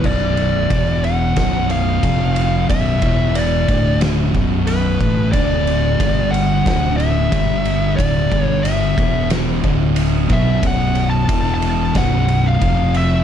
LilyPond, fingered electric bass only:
\new Staff \with { instrumentName = "Fingered electric bass" } { \clef bass \time 4/4 \key b \minor \tempo 4 = 91 b,,,4 e,,4 b,,,4 f,,4 | r8 e,,4 r4 b,,,4 a,,8 | d,,4 g,,4 d,,4 g,,4 | d,,8 g,,4 e,,4 d,,4 b,,8 |
b,,,4 e,,4 b,,,4 f,,4 | }